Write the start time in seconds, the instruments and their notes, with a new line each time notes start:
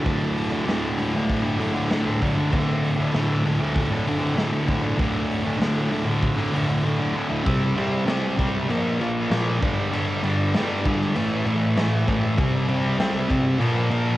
0.04 distorted electric guitar D2 A2 D3, kick, open hi-hat
0.37 open hi-hat
0.50 distorted electric guitar A2 D3
0.65 distorted electric guitar D2 A2 D3, snare, open hi-hat
0.97 distorted electric guitar D2 A2 D3, open hi-hat
1.13 distorted electric guitar A2 D3
1.29 kick, open hi-hat
1.44 distorted electric guitar A2 D3
1.59 distorted electric guitar D2 A2 D3, open hi-hat
1.74 distorted electric guitar A2 D3
1.89 distorted electric guitar D2 A2 D3, snare, open hi-hat
2.04 distorted electric guitar A2 D3
2.20 distorted electric guitar D2 A2 D3, kick, open hi-hat
2.36 distorted electric guitar A2 D3
2.52 distorted electric guitar D2 A2 D3, kick, crash
2.84 open hi-hat
2.97 distorted electric guitar A2 D3
3.13 distorted electric guitar D2 A2 D3, snare, open hi-hat
3.44 distorted electric guitar D2 A2 D3, open hi-hat
3.61 distorted electric guitar A2 D3
3.76 kick, open hi-hat
3.91 distorted electric guitar A2 D3
4.06 distorted electric guitar D2 A2 D3, open hi-hat
4.20 distorted electric guitar A2 D3
4.35 distorted electric guitar D2 A2 D3, snare, open hi-hat
4.51 distorted electric guitar A2 D3
4.67 distorted electric guitar D2 A2 D3, kick, open hi-hat
4.82 distorted electric guitar A2 D3
4.97 distorted electric guitar D2 A2 D3, kick, open hi-hat
5.31 open hi-hat
5.44 distorted electric guitar A2 D3
5.59 distorted electric guitar D2 A2 D3, snare, open hi-hat
5.90 distorted electric guitar D2 A2 D3, open hi-hat
6.05 distorted electric guitar A2 D3
6.23 kick, open hi-hat
6.36 distorted electric guitar A2 D3
6.52 distorted electric guitar D2 A2 D3, open hi-hat
6.67 distorted electric guitar A2 D3
6.83 distorted electric guitar D2 A2 D3
6.99 distorted electric guitar A2 D3
7.13 distorted electric guitar D2 A2 D3
7.29 distorted electric guitar A2 D3
7.45 distorted electric guitar C3 G3 C4, kick, crash
7.76 distorted electric guitar C3 G3 C4, crash
8.06 distorted electric guitar C3 G3 C4, snare, crash
8.38 distorted electric guitar C3 G3 C4, kick, crash
8.69 distorted electric guitar A#2 F3 A#3, crash
9.00 distorted electric guitar A#2 F3 A#3, crash
9.30 distorted electric guitar A#2 F3 A#3, snare, crash
9.61 distorted electric guitar G2 D3 G3, kick, crash
9.93 distorted electric guitar G2 D3 G3, crash
10.23 distorted electric guitar G2 D3 G3, crash
10.54 distorted electric guitar G2 D3 G3, snare, crash
10.85 distorted electric guitar G2 D3 G3, kick, crash
11.01 snare
11.15 distorted electric guitar A2 E3 A3, crash
11.45 distorted electric guitar A2 E3 A3, crash
11.77 distorted electric guitar A2 E3 A3, snare, crash
12.08 distorted electric guitar A2 E3 A3, kick, crash
12.38 distorted electric guitar C3 G3 C4, kick, crash
12.68 distorted electric guitar C3 G3 C4, crash
12.99 distorted electric guitar C3 G3 C4, snare, crash
13.29 distorted electric guitar C3 G3 C4, kick, crash
13.59 distorted electric guitar A#2 F3 A#3, crash
13.91 distorted electric guitar A#2 F3 A#3, crash